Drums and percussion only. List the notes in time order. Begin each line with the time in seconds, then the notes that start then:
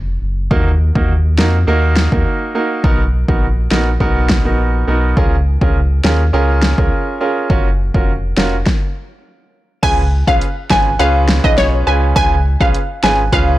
0.51 kick
0.95 kick
1.38 snare
1.96 snare
2.12 kick
2.84 kick
3.28 kick
3.71 snare
4.00 kick
4.29 kick, snare
5.17 kick
5.61 kick
6.04 snare
6.62 snare
6.78 kick
7.50 kick
7.94 kick
8.37 snare
8.66 kick, snare
9.83 kick, closed hi-hat, crash
10.27 kick
10.41 closed hi-hat
10.70 kick, snare
11.00 closed hi-hat
11.28 snare
11.44 kick
11.58 snare, closed hi-hat
12.16 kick, closed hi-hat
12.61 kick
12.74 closed hi-hat
13.04 snare
13.33 kick, closed hi-hat